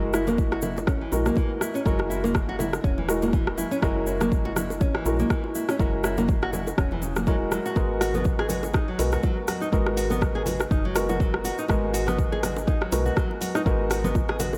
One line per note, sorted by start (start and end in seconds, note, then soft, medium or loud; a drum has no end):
0.00 1.07 F#1 medium
0.00 1.10 G#3 medium
0.00 1.10 E4 medium
0.00 1.10 F#4 medium
0.00 1.10 A#4 loud
0.13 0.27 E4 medium
0.13 cross-stick medium
0.13 low bongo loud
0.13 shaker medium
0.27 0.37 A#3 loud
0.27 high bongo medium
0.27 muted conga soft
0.27 high conga loud
0.27 low conga loud
0.27 shaker soft
0.38 kick loud
0.38 shaker soft
0.52 0.62 F#4 loud
0.52 cross-stick medium
0.52 low bongo medium
0.52 muted conga medium
0.62 0.75 E4 medium
0.62 high bongo medium
0.62 high conga medium
0.62 low conga loud
0.62 shaker medium
0.77 high bongo medium
0.77 low bongo medium
0.77 muted conga soft
0.77 shaker soft
0.87 1.01 C#4 medium
0.87 kick loud
0.87 cross-stick medium
0.87 high bongo medium
0.87 shaker soft
1.01 1.11 E3 medium
1.12 1.30 A#1 medium
1.12 1.83 G#3 medium
1.12 1.83 E4 medium
1.12 1.84 F#4 medium
1.12 1.84 A#4 medium
1.12 low bongo medium
1.12 muted conga medium
1.12 shaker medium
1.25 1.36 A#3 loud
1.25 cross-stick medium
1.25 high conga medium
1.25 low conga medium
1.25 shaker medium
1.35 1.50 E3 medium
1.35 kick loud
1.35 low bongo medium
1.35 muted conga soft
1.35 shaker soft
1.61 1.74 E4 medium
1.61 cross-stick medium
1.61 muted conga medium
1.61 shaker medium
1.74 1.81 C#4 loud
1.74 low bongo medium
1.74 shaker medium
1.85 2.79 F#1 medium
1.85 1.99 F#3 medium
1.85 3.06 G#3 medium
1.85 3.06 E4 medium
1.85 3.06 F#4 medium
1.85 3.06 A#4 loud
1.85 kick loud
1.85 muted conga medium
1.85 shaker soft
1.99 cross-stick medium
1.99 low bongo loud
2.10 2.23 E4 medium
2.10 shaker loud
2.24 2.34 A#3 loud
2.24 high bongo medium
2.24 muted conga soft
2.24 high conga loud
2.24 low conga loud
2.24 shaker soft
2.34 kick loud
2.34 cross-stick loud
2.34 low bongo medium
2.34 shaker soft
2.49 2.59 F#4 loud
2.49 muted conga medium
2.59 2.72 E4 medium
2.59 high bongo medium
2.59 low bongo medium
2.59 high conga medium
2.59 low conga loud
2.59 shaker loud
2.73 cross-stick medium
2.73 high bongo medium
2.73 muted conga soft
2.73 shaker soft
2.84 3.65 E1 loud
2.84 2.97 C#4 medium
2.84 kick loud
2.84 shaker soft
2.98 3.08 E3 medium
2.98 low bongo medium
2.98 high conga medium
3.08 3.80 G#3 medium
3.08 3.80 E4 medium
3.08 3.80 F#4 medium
3.08 3.80 A#4 medium
3.08 cross-stick medium
3.08 muted conga soft
3.08 shaker loud
3.22 3.32 A#3 medium
3.22 low bongo medium
3.22 low conga medium
3.22 shaker medium
3.33 3.46 E3 medium
3.33 kick loud
3.33 muted conga soft
3.33 shaker soft
3.47 cross-stick medium
3.58 3.70 E4 medium
3.58 low bongo medium
3.58 muted conga medium
3.58 high conga loud
3.58 shaker medium
3.71 3.77 C#4 loud
3.71 shaker medium
3.82 5.00 F#1 loud
3.82 3.96 F#3 medium
3.82 5.03 G#3 medium
3.82 5.03 E4 medium
3.82 5.03 F#4 medium
3.82 5.03 A#4 loud
3.82 kick loud
3.82 cross-stick medium
3.82 low bongo medium
3.82 muted conga soft
3.82 shaker soft
4.06 4.20 E4 medium
4.06 shaker medium
4.20 4.31 A#3 loud
4.20 cross-stick medium
4.20 high bongo medium
4.20 low bongo medium
4.20 muted conga soft
4.20 high conga loud
4.20 low conga loud
4.20 shaker medium
4.32 kick loud
4.32 shaker soft
4.45 4.55 F#4 loud
4.45 low bongo loud
4.45 muted conga medium
4.56 4.69 E4 medium
4.56 cross-stick medium
4.56 high bongo medium
4.56 high conga loud
4.56 low conga loud
4.56 shaker loud
4.70 high bongo medium
4.70 muted conga soft
4.70 shaker medium
4.80 4.94 C#4 medium
4.80 kick loud
4.80 high bongo medium
4.80 low bongo medium
4.80 shaker soft
4.95 5.04 E3 medium
4.95 cross-stick medium
5.06 5.23 A#1 medium
5.06 5.77 G#3 medium
5.06 5.77 E4 medium
5.06 5.77 F#4 medium
5.06 5.77 A#4 medium
5.06 low bongo loud
5.06 muted conga soft
5.06 shaker loud
5.19 5.29 A#3 loud
5.19 high conga medium
5.19 low conga medium
5.19 shaker soft
5.30 5.43 E3 medium
5.30 kick loud
5.30 cross-stick medium
5.30 muted conga soft
5.30 shaker soft
5.44 low bongo medium
5.55 5.67 E4 medium
5.55 muted conga soft
5.55 shaker medium
5.69 5.75 C#4 medium
5.69 cross-stick medium
5.69 low bongo loud
5.69 shaker medium
5.79 6.72 F#1 loud
5.79 5.93 F#3 medium
5.79 7.00 G#3 medium
5.79 7.00 E4 medium
5.79 7.00 F#4 medium
5.79 7.00 A#4 loud
5.79 kick loud
5.79 muted conga medium
5.79 shaker soft
6.04 6.17 E4 medium
6.04 cross-stick loud
6.04 low bongo medium
6.04 shaker loud
6.18 6.27 A#3 loud
6.18 high bongo medium
6.18 muted conga soft
6.18 high conga loud
6.18 low conga loud
6.18 shaker medium
6.28 kick loud
6.28 low bongo medium
6.28 shaker soft
6.42 6.53 F#4 loud
6.42 cross-stick medium
6.42 muted conga soft
6.53 6.66 E4 medium
6.53 high bongo medium
6.53 high conga medium
6.53 low conga loud
6.53 shaker medium
6.67 high bongo medium
6.67 low bongo medium
6.67 muted conga soft
6.67 shaker medium
6.78 7.58 E1 medium
6.78 6.91 C#4 medium
6.78 kick loud
6.78 cross-stick medium
6.78 shaker soft
6.91 7.01 E3 medium
6.91 low bongo medium
6.91 high conga medium
7.02 7.15 C#3 medium
7.02 muted conga medium
7.02 shaker medium
7.16 7.26 A#3 medium
7.16 cross-stick medium
7.16 high conga loud
7.16 low conga medium
7.16 shaker medium
7.27 7.35 F#3 medium
7.27 7.74 G#3 medium
7.27 7.74 E4 medium
7.27 7.74 F#4 medium
7.27 7.74 A#4 loud
7.27 kick loud
7.27 low bongo medium
7.27 shaker soft
7.51 7.59 F#3 medium
7.51 cross-stick medium
7.51 low bongo medium
7.51 muted conga medium
7.51 shaker medium
7.66 7.76 F#4 loud
7.66 shaker medium
7.76 8.94 G#1 loud
7.76 7.89 G#3 medium
7.76 8.97 G#3 medium
7.76 8.97 B3 medium
7.76 8.97 F#4 medium
7.76 8.97 A#4 loud
7.76 kick loud
7.76 low bongo medium
7.76 muted conga medium
7.76 shaker soft
8.01 8.14 F#4 medium
8.01 cross-stick medium
8.01 open hi-hat medium
8.01 low bongo loud
8.01 shaker loud
8.14 8.24 B3 loud
8.14 high bongo medium
8.14 muted conga soft
8.14 high conga loud
8.14 low conga loud
8.14 shaker soft
8.24 kick loud
8.24 shaker soft
8.39 8.49 G#4 loud
8.39 cross-stick medium
8.39 low bongo medium
8.39 muted conga medium
8.49 8.62 F#4 medium
8.49 open hi-hat medium
8.49 high bongo medium
8.49 high conga loud
8.49 low conga loud
8.49 shaker loud
8.63 high bongo medium
8.63 low bongo loud
8.63 muted conga soft
8.63 shaker medium
8.74 8.88 D#4 medium
8.74 kick loud
8.74 cross-stick medium
8.74 high bongo medium
8.74 shaker soft
8.88 8.98 F#3 medium
8.99 9.17 B1 medium
8.99 9.70 G#3 medium
8.99 9.70 B3 medium
8.99 9.70 F#4 medium
8.99 9.70 A#4 medium
8.99 open hi-hat medium
8.99 low bongo medium
8.99 muted conga medium
8.99 shaker medium
9.12 9.22 F#4 medium
9.12 cross-stick medium
9.12 low conga medium
9.12 shaker soft
9.23 9.37 F#3 medium
9.23 kick loud
9.23 low bongo medium
9.23 muted conga soft
9.23 shaker soft
9.48 9.60 F#4 medium
9.48 cross-stick medium
9.48 open hi-hat medium
9.48 muted conga soft
9.48 high conga loud
9.48 shaker medium
9.60 9.68 D#4 medium
9.60 low bongo medium
9.60 shaker soft
9.72 10.66 G#1 loud
9.72 9.86 G#3 medium
9.72 10.93 G#3 medium
9.72 10.93 B3 medium
9.72 10.93 F#4 medium
9.72 10.93 A#4 loud
9.72 kick loud
9.72 muted conga medium
9.72 shaker soft
9.86 cross-stick medium
9.86 low bongo medium
9.97 10.10 F#4 medium
9.97 open hi-hat medium
9.97 shaker medium
10.10 10.21 B3 loud
10.10 high bongo medium
10.10 muted conga soft
10.10 high conga loud
10.10 low conga loud
10.10 shaker medium
10.21 kick loud
10.21 cross-stick medium
10.21 low bongo medium
10.21 shaker soft
10.35 10.45 G#4 loud
10.35 muted conga soft
10.46 10.59 F#4 medium
10.46 open hi-hat medium
10.46 high bongo medium
10.46 low bongo loud
10.46 high conga medium
10.46 low conga loud
10.46 shaker medium
10.60 cross-stick medium
10.60 high bongo medium
10.60 muted conga soft
10.60 shaker soft
10.71 11.52 F#1 medium
10.71 10.84 D#4 medium
10.71 kick loud
10.71 shaker soft
10.84 10.95 F#3 medium
10.84 low bongo medium
10.84 high conga medium
10.95 11.67 G#3 medium
10.95 11.67 B3 medium
10.95 11.67 F#4 medium
10.95 11.67 A#4 medium
10.95 cross-stick medium
10.95 open hi-hat medium
10.95 muted conga soft
10.95 shaker medium
11.09 11.19 F#4 medium
11.09 low bongo loud
11.09 high conga medium
11.09 low conga medium
11.09 shaker soft
11.20 11.33 F#3 medium
11.20 kick loud
11.20 muted conga soft
11.20 shaker soft
11.34 cross-stick medium
11.44 11.57 F#4 medium
11.44 open hi-hat medium
11.44 low bongo medium
11.44 muted conga soft
11.44 shaker medium
11.58 11.65 D#4 loud
11.58 shaker medium
11.68 12.87 G#1 loud
11.68 11.82 G#3 medium
11.68 12.90 G#3 medium
11.68 12.90 B3 medium
11.68 12.90 F#4 medium
11.68 12.90 A#4 loud
11.68 kick loud
11.68 cross-stick medium
11.68 low bongo medium
11.68 muted conga medium
11.68 shaker soft
11.94 12.07 F#4 medium
11.94 open hi-hat medium
11.94 shaker medium
12.07 12.17 B3 loud
12.07 cross-stick medium
12.07 high bongo medium
12.07 low bongo medium
12.07 muted conga soft
12.07 high conga loud
12.07 low conga loud
12.07 shaker soft
12.19 kick loud
12.19 shaker soft
12.32 12.43 G#4 loud
12.32 low bongo medium
12.32 muted conga medium
12.43 12.56 F#4 medium
12.43 cross-stick medium
12.43 open hi-hat medium
12.43 high bongo medium
12.43 high conga medium
12.43 low conga loud
12.43 shaker medium
12.57 high bongo medium
12.57 muted conga soft
12.57 shaker soft
12.67 12.81 D#4 medium
12.67 kick loud
12.67 high bongo medium
12.67 low bongo medium
12.67 shaker soft
12.81 12.91 F#3 medium
12.81 cross-stick medium
12.92 13.10 B1 medium
12.92 13.64 G#3 medium
12.92 13.64 B3 medium
12.92 13.64 F#4 medium
12.92 13.64 A#4 medium
12.92 open hi-hat medium
12.92 low bongo medium
12.92 muted conga soft
12.92 shaker medium
13.05 13.16 F#4 medium
13.05 low conga medium
13.05 shaker soft
13.16 13.30 F#3 medium
13.16 kick loud
13.16 cross-stick medium
13.16 muted conga soft
13.16 shaker soft
13.31 low bongo medium
13.41 13.54 F#4 medium
13.41 open hi-hat medium
13.41 muted conga medium
13.41 high conga medium
13.41 shaker medium
13.55 13.61 D#4 loud
13.55 cross-stick medium
13.55 low bongo medium
13.55 shaker soft
13.66 14.58 G#1 loud
13.66 13.79 G#3 medium
13.66 14.58 G#3 medium
13.66 14.58 B3 medium
13.66 14.58 F#4 medium
13.66 14.58 A#4 loud
13.66 kick loud
13.66 muted conga medium
13.66 shaker soft
13.90 14.04 F#4 medium
13.90 cross-stick medium
13.90 open hi-hat medium
13.90 low bongo medium
13.90 shaker medium
14.04 14.14 B3 loud
14.04 high bongo medium
14.04 muted conga soft
14.04 high conga loud
14.04 low conga loud
14.04 shaker medium
14.15 kick loud
14.15 low bongo medium
14.15 shaker soft
14.29 14.39 G#4 loud
14.29 cross-stick medium
14.29 muted conga medium
14.39 14.52 F#4 medium
14.39 open hi-hat medium
14.39 high bongo medium
14.39 high conga medium
14.39 low conga loud
14.39 shaker medium
14.53 high bongo medium
14.53 low bongo medium
14.53 muted conga soft
14.53 shaker soft